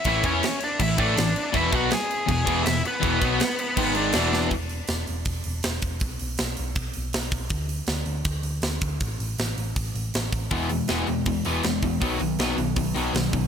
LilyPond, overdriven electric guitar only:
\new Staff \with { instrumentName = "Overdriven electric guitar" } { \clef bass \time 4/4 \key e \mixolydian \tempo 4 = 160 <a, e a>8 <e b e'>8 r4 <a, e>8 <a, e a>8 <a, e>8 r8 | <e, b, e>8 <b, fis b>8 r4 <e, b,>8 <e, b, e>8 <e, b,>8 r8 | <e, b, e>8 <b, fis b>8 r4 <gis, dis gis>4 <e, b, e>4 | r1 |
r1 | r1 | r1 | <e gis b>8 <e gis>8 <e gis b>8 <e gis>8 <e gis>8 <e gis b>8 <e gis>8 <e gis>8 |
<b, dis fis>8 <b, dis>8 <b, dis fis>8 <b, dis>8 <b, dis>8 <b, dis fis>8 <b, dis>8 <b, dis>8 | }